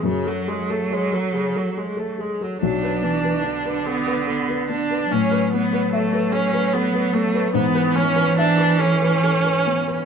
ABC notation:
X:1
M:6/8
L:1/16
Q:3/8=48
K:Bdor
V:1 name="Felt piano"
F,, A G A c A G A G A G A | B,,, B B, B d B A B A B B, B | A,, B B, B e B A B A B B, B | G,, B B, B e B A B A B B, B |]
V:2 name="Viola"
C, F, G, A, G, F, C, F, G, A, G, F, | D6 B,2 B,2 D2 | C2 B,2 A,2 C2 B,2 A,2 | B,2 C2 D2 C6 |]
V:3 name="Cello" clef=bass
F,8- F,3 z | F,2 E,2 D,8 | F,12 | E,12 |]